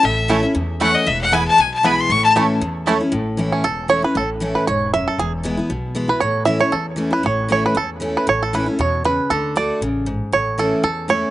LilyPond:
<<
  \new Staff \with { instrumentName = "Fiddle" } { \time 4/4 \key a \major \tempo 4 = 233 e''4. r4. fis''8 dis''8 | e''8 fis''8 gis''8 a''8 gis''8 a''8 b''8 c'''8 | cis'''8 a''8 r2. | r1 |
r1 | r1 | r1 | r1 |
r1 | r1 | r1 | }
  \new Staff \with { instrumentName = "Five-string banjo" } { \time 4/4 \key a \major r4 <a cis' e'>8 r4. <a cis' e'>8 r8 | r4 <b e'>8 r4. <b e'>8 r8 | r4 <a cis' e'>8 r4. <a cis' e'>8 r8 | r4. cis'8 a'4 cis''8 b'8 |
a'8 r4 b'8 cis''4 e''8 a'8 | gis'8 r2. b'8 | cis''4 e''8 cis''8 a'8 r4 b'8 | cis''4 cis''8 b'8 a'8 r4 b'8 |
cis''8 a'8 b'8 r8 cis''4 b'4 | a'4 d''4 r2 | cis''4 a'4 a'4 cis''4 | }
  \new Staff \with { instrumentName = "Mandolin" } { \time 4/4 \key a \major r4 <a e' cis'' a''>8 r4. <a e' cis'' a''>8 r8 | r4 <b e' b' gis''>8 r4. <b e' b' gis''>8 r8 | r4 <a e' cis'' a''>8 r4. <a e' cis'' a''>8 r8 | r1 |
r1 | r1 | r1 | r1 |
r1 | r1 | r1 | }
  \new Staff \with { instrumentName = "Steel-string acoustic guitar" } { \time 4/4 \key a \major << { r4 <e a cis' e'>8 <cis' e'>8 r4 <e a cis' e'>4 | r4 <e gis b e'>4 r4 <e gis b e'>4 | r4 <e a cis' e'>4 r4 <e a cis' e'>8 <cis' e'>8 | r4 <e a cis' e'>4 r4 <e a cis' e'>8 <cis' e'>8 |
r4 <e a cis' e'>4 r2 | r4 <e gis b e'>8 <b e'>8 r4 <e gis b e'>8 <b e'>8 | r4 <e a cis' e'>8 <cis' e'>8 r4 <e a cis' e'>8 <cis' e'>8 | r4 <e a cis' e'>4 r4 <e a cis' e'>4 |
r4 <e a cis' e'>8 <cis' e'>8 r2 | r4 <d a d' fis'>4 r2 | r4 <e a cis' e'>4 r4 <e a cis' e'>4 | } \\ { a,2 e,2 | e,2 b,2 | a,2 e,2 | a,2 e,2 |
a,2 gis,4 fis,4 | e,2 b,2 | a,2 e,2 | a,2 e,2 |
a,2 b,4 cis4 | d2 cis4 gis,4 | a,2 e,2 | } >> }
  \new Staff \with { instrumentName = "Upright bass" } { \clef bass \time 4/4 \key a \major a,,2 e,2 | e,,2 b,,2 | a,,2 e,2 | a,,2 e,,2 |
a,,2 e,,2 | e,,2 b,,2 | a,,2 e,2 | a,,2 e,2 |
a,,2 e,2 | d,2 a,,2 | a,,2 e,2 | }
>>